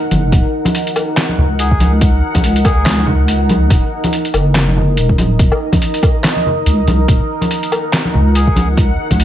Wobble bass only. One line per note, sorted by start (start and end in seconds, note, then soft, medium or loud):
0.11 0.31 F#1 loud
0.32 0.44 D#1 loud
1.38 2.21 C#2 medium
2.35 3.69 C#2 medium
3.70 3.82 D#1 loud
4.34 4.99 F#1 medium
4.97 5.38 D#1 loud
5.39 5.51 D#1 loud
6.66 6.86 C#2 loud
6.87 7.07 C2 medium
7.08 7.20 D#1 loud
8.14 8.97 C#2 medium
9.11 9.24 C#2 medium